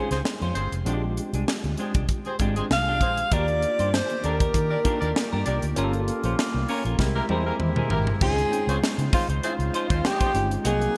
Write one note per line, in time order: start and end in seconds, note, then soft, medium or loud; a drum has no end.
0.00 0.86 G#3 medium
0.00 0.86 C4 medium
0.00 0.88 C#4 medium
0.00 0.89 D#4 medium
0.00 0.10 F4 medium
0.00 0.87 F4 medium
0.00 0.88 G4 medium
0.00 0.22 G#4 medium
0.00 0.65 G#4 medium
0.00 0.10 C5 medium
0.11 0.21 C#2 medium
0.11 0.20 C4 medium
0.11 0.22 C#4 soft
0.11 0.20 F4 medium
0.11 0.22 F4 medium
0.11 0.20 G#4 medium
0.11 0.21 C5 medium
0.11 0.20 C5 medium
0.11 snare soft
0.11 closed hi-hat medium
0.25 muted clean electric guitar stroke soft
0.25 snare loud
0.41 0.51 F2 medium
0.41 0.55 C#4 medium
0.41 0.55 F4 medium
0.41 0.55 C5 medium
0.41 closed hi-hat soft
0.55 0.67 G1 medium
0.55 0.75 C4 medium
0.55 0.76 F4 medium
0.55 0.75 G#4 medium
0.55 0.75 C5 loud
0.55 closed hi-hat medium
0.72 0.82 F1 medium
0.72 muted clean electric guitar stroke soft
0.72 closed hi-hat medium
0.85 1.18 A#1 loud
0.85 1.75 G#3 medium
0.85 1.02 G#3 medium
0.85 1.75 C4 medium
0.85 1.75 D4 medium
0.85 1.02 D4 medium
0.85 1.76 F4 medium
0.85 0.94 F#4 medium
0.85 1.02 G4 medium
0.85 closed hi-hat loud
0.94 1.79 G4 loud
1.04 muted clean electric guitar stroke soft
1.17 muted clean electric guitar stroke soft
1.17 closed hi-hat medium
1.33 1.43 C2 medium
1.33 1.45 G#3 medium
1.33 1.44 D4 medium
1.33 1.44 G#4 medium
1.33 closed hi-hat medium
1.48 muted clean electric guitar stroke soft
1.48 snare loud
1.64 1.74 D2 medium
1.64 muted clean electric guitar stroke soft
1.64 closed hi-hat soft
1.77 1.94 G#3 medium
1.77 1.93 C4 medium
1.77 1.94 D4 medium
1.77 1.94 G4 medium
1.77 1.93 G#4 medium
1.77 1.93 C5 medium
1.77 closed hi-hat medium
1.94 2.05 C2 medium
1.94 2.06 G#3 soft
1.94 2.05 D4 medium
1.94 2.05 G4 medium
1.94 kick medium
1.94 closed hi-hat medium
2.09 muted clean electric guitar stroke soft
2.09 kick medium
2.09 closed hi-hat medium
2.25 2.35 C4 medium
2.25 2.35 G#4 medium
2.25 2.35 C5 loud
2.25 muted clean electric guitar stroke soft
2.25 closed hi-hat soft
2.39 2.61 G#1 medium
2.39 3.06 G#3 medium
2.39 2.55 G#3 medium
2.39 3.06 C4 medium
2.39 3.07 D4 medium
2.39 2.56 D4 medium
2.39 3.07 F4 medium
2.39 2.56 G4 medium
2.39 3.07 G#4 medium
2.39 kick medium
2.39 closed hi-hat medium
2.56 2.68 G#3 soft
2.56 2.65 C4 medium
2.56 2.67 D4 soft
2.56 2.67 G4 medium
2.56 2.65 G#4 medium
2.56 2.65 C5 medium
2.56 closed hi-hat soft
2.70 3.01 C2 medium
2.70 3.35 F5 loud
2.70 snare loud
2.88 3.01 G#3 medium
2.88 3.01 D4 medium
2.88 3.01 G4 medium
3.01 3.22 A#1 medium
3.01 3.21 C4 medium
3.01 3.21 G#4 medium
3.01 3.21 C5 loud
3.01 muted clean electric guitar stroke soft
3.01 kick medium
3.01 closed hi-hat medium
3.17 muted clean electric guitar stroke soft
3.17 closed hi-hat medium
3.31 3.64 D#2 loud
3.31 5.74 D#3 medium
3.31 4.20 A#3 medium
3.31 4.20 D4 medium
3.31 3.47 D4 medium
3.31 4.21 D#4 medium
3.31 4.21 F4 medium
3.31 3.39 F#4 medium
3.31 5.75 G4 medium
3.31 3.47 G4 loud
3.31 3.47 A#4 loud
3.31 5.75 D5 medium
3.31 3.96 D5 loud
3.31 kick loud
3.31 closed hi-hat loud
3.39 4.24 G4 medium
3.48 closed hi-hat soft
3.62 muted clean electric guitar stroke soft
3.62 closed hi-hat medium
3.79 4.00 G2 medium
3.79 3.90 D4 medium
3.79 3.90 G4 medium
3.79 3.89 C5 medium
3.79 closed hi-hat medium
3.94 4.24 C5 medium
3.94 muted clean electric guitar stroke soft
3.94 snare loud
4.10 muted clean electric guitar stroke soft
4.10 closed hi-hat soft
4.23 4.45 D#2 medium
4.23 4.38 D4 medium
4.23 4.39 D4 medium
4.23 4.38 G4 medium
4.23 4.40 G4 medium
4.23 4.37 A#4 medium
4.23 5.43 A#4 medium
4.23 4.40 A#4 medium
4.23 4.38 D5 medium
4.23 closed hi-hat medium
4.40 4.51 D4 medium
4.40 4.51 G4 medium
4.40 4.51 A#4 medium
4.40 kick loud
4.40 closed hi-hat medium
4.54 4.75 D#3 loud
4.54 muted clean electric guitar stroke soft
4.54 kick medium
4.54 closed hi-hat medium
4.70 4.80 D4 medium
4.70 4.79 G4 medium
4.70 4.80 A#4 medium
4.70 4.80 D5 medium
4.70 muted clean electric guitar stroke soft
4.84 5.51 A#3 medium
4.84 5.51 D4 medium
4.84 5.00 D4 medium
4.84 5.51 D#4 medium
4.84 5.52 F4 medium
4.84 5.00 G4 medium
4.84 4.92 A4 medium
4.84 5.01 A#4 medium
4.84 kick medium
4.84 closed hi-hat medium
4.92 5.55 A#4 medium
5.01 5.11 D#2 medium
5.01 5.10 D4 medium
5.01 5.12 D4 soft
5.01 5.10 G4 medium
5.01 5.12 G4 medium
5.01 5.10 A#4 medium
5.01 5.12 A#4 medium
5.01 5.10 D5 loud
5.01 closed hi-hat soft
5.16 muted clean electric guitar stroke medium
5.16 snare loud
5.33 5.42 G2 medium
5.33 5.46 D4 medium
5.33 5.46 G4 medium
5.33 5.45 A#4 medium
5.46 5.58 C2 medium
5.46 5.66 D4 medium
5.46 5.58 D4 medium
5.46 5.66 G4 medium
5.46 5.59 G4 medium
5.46 5.66 A#4 medium
5.46 5.59 A#4 medium
5.46 5.66 D5 loud
5.46 closed hi-hat medium
5.62 5.72 D2 medium
5.62 muted clean electric guitar stroke soft
5.62 closed hi-hat medium
5.76 6.09 G1 loud
5.76 6.98 G3 medium
5.76 6.65 A#3 loud
5.76 6.98 A#3 medium
5.76 6.65 C#4 medium
5.76 6.98 C#4 medium
5.76 5.92 C#4 medium
5.76 6.98 F4 medium
5.76 6.65 F4 medium
5.76 5.93 F4 medium
5.76 6.66 G4 medium
5.76 5.84 G#4 medium
5.76 5.93 A#4 loud
5.76 closed hi-hat medium
5.84 6.69 A4 loud
5.93 muted clean electric guitar stroke soft
5.93 closed hi-hat soft
6.08 muted clean electric guitar stroke soft
6.08 closed hi-hat medium
6.24 6.33 A#1 medium
6.24 6.35 C#4 medium
6.24 6.35 F4 medium
6.24 6.34 C5 medium
6.24 closed hi-hat medium
6.39 muted clean electric guitar stroke soft
6.39 snare loud
6.54 6.64 C2 medium
6.54 muted clean electric guitar stroke soft
6.68 6.83 C#4 medium
6.68 6.84 C#4 medium
6.68 6.84 F4 medium
6.68 6.83 G4 medium
6.68 6.83 A#4 medium
6.68 6.85 A#4 loud
6.68 6.83 C#5 medium
6.68 open hi-hat medium
6.85 6.95 A#1 medium
6.85 6.96 C#4 soft
6.85 6.96 F4 medium
6.85 6.96 A#4 medium
6.85 closed hi-hat soft
6.99 7.20 C2 loud
6.99 8.20 C3 medium
6.99 7.24 G#3 medium
6.99 8.20 G#3 medium
6.99 8.20 A#3 medium
6.99 7.24 C4 medium
6.99 8.20 E4 medium
6.99 7.24 E4 medium
6.99 7.24 G4 medium
6.99 7.24 A#4 loud
6.99 muted clean electric guitar stroke soft
6.99 kick medium
6.99 snare medium
7.16 7.25 A#3 loud
7.16 7.25 E4 medium
7.16 7.25 G4 medium
7.16 7.25 A#4 loud
7.16 muted clean electric guitar stroke medium
7.29 7.50 E2 medium
7.29 7.96 G#3 medium
7.29 7.96 C4 medium
7.29 7.96 E4 medium
7.29 7.45 E4 medium
7.29 7.97 G4 medium
7.29 7.45 G#4 medium
7.29 7.46 A#4 medium
7.29 7.97 C5 medium
7.29 high tom medium
7.46 7.55 A#3 medium
7.46 7.55 E4 medium
7.46 7.57 E4 soft
7.46 7.55 G4 medium
7.46 7.57 G#4 medium
7.46 7.55 A#4 loud
7.46 7.57 A#4 medium
7.59 7.81 E2 medium
7.59 muted clean electric guitar stroke medium
7.59 mid tom medium
7.76 7.91 E4 medium
7.76 7.90 G#4 medium
7.76 7.90 A#4 medium
7.76 mid tom medium
7.90 8.11 G#1 medium
7.90 8.10 A#3 loud
7.90 8.10 E4 loud
7.90 8.10 G4 medium
7.90 8.10 A#4 loud
7.90 muted clean electric guitar stroke soft
7.90 floor tom medium
8.07 muted clean electric guitar stroke soft
8.07 floor tom medium
8.21 8.42 C#2 loud
8.21 10.48 C#3 medium
8.21 8.44 G#3 medium
8.21 8.44 C4 medium
8.21 8.44 C#4 medium
8.21 8.44 D#4 medium
8.21 10.48 D#4 medium
8.21 8.37 D#4 medium
8.21 8.44 F4 medium
8.21 10.48 F4 medium
8.21 8.37 F4 medium
8.21 8.79 G#4 loud
8.21 10.48 C5 medium
8.21 8.38 C5 medium
8.21 kick loud
8.21 crash loud
8.38 muted clean electric guitar stroke soft
8.38 closed hi-hat soft
8.51 9.40 G#3 medium
8.51 9.40 C4 medium
8.51 9.40 C#4 medium
8.51 9.40 D#4 medium
8.51 9.40 G5 medium
8.51 muted clean electric guitar stroke soft
8.51 closed hi-hat medium
8.67 8.77 C#2 medium
8.67 8.78 C4 loud
8.67 8.79 D#4 soft
8.67 8.78 F4 medium
8.67 8.79 F4 medium
8.67 8.78 G#4 loud
8.67 8.78 C5 loud
8.67 8.79 C#5 medium
8.67 closed hi-hat medium
8.84 muted clean electric guitar stroke soft
8.84 snare loud
8.98 9.08 C#3 medium
8.98 muted clean electric guitar stroke medium
8.98 closed hi-hat medium
9.13 9.27 C4 medium
9.13 9.28 D#4 medium
9.13 9.27 F4 medium
9.13 9.28 F4 medium
9.13 9.27 G#4 medium
9.13 9.27 C5 medium
9.13 9.29 C5 medium
9.13 kick loud
9.13 open hi-hat medium
9.29 9.39 C#2 loud
9.29 9.40 D#4 soft
9.29 9.40 F4 medium
9.29 9.40 C5 medium
9.29 closed hi-hat medium
9.43 9.54 C4 loud
9.43 9.54 F4 loud
9.43 10.08 F4 medium
9.43 9.54 G#4 loud
9.43 9.54 C5 loud
9.43 muted clean electric guitar stroke soft
9.43 closed hi-hat medium
9.59 9.69 C#2 medium
9.59 muted clean electric guitar stroke soft
9.59 closed hi-hat soft
9.74 9.89 D#4 medium
9.74 9.89 F4 medium
9.74 9.88 C5 medium
9.74 closed hi-hat medium
9.90 10.00 D#2 medium
9.90 10.33 G#3 loud
9.90 10.33 C4 medium
9.90 10.01 D#4 medium
9.90 10.00 F4 medium
9.90 10.33 F4 medium
9.90 10.00 C5 medium
9.90 10.33 C5 loud
9.90 kick loud
9.90 closed hi-hat medium
10.04 10.52 G4 loud
10.04 muted clean electric guitar stroke soft
10.04 snare loud
10.20 10.33 D#4 medium
10.20 10.34 F4 medium
10.20 10.34 C5 medium
10.20 kick medium
10.20 closed hi-hat medium
10.34 10.55 G1 medium
10.34 10.58 G#3 medium
10.34 10.58 C4 medium
10.34 10.58 C#4 medium
10.34 10.58 D#4 medium
10.34 10.58 F4 medium
10.34 muted clean electric guitar stroke soft
10.34 closed hi-hat medium
10.51 muted clean electric guitar stroke soft
10.51 closed hi-hat medium
10.64 10.86 C2 loud
10.64 10.97 C3 medium
10.64 10.88 F#3 medium
10.64 10.97 A#3 medium
10.64 10.88 A#3 medium
10.64 10.88 C4 medium
10.64 10.97 D#4 medium
10.64 10.89 D#4 medium
10.64 10.80 F#4 medium
10.64 10.89 F#4 medium
10.64 10.97 G#4 medium
10.64 10.80 A#4 medium
10.64 10.80 D#5 medium
10.64 10.97 F#5 medium
10.64 closed hi-hat loud
10.81 muted clean electric guitar stroke soft
10.81 closed hi-hat medium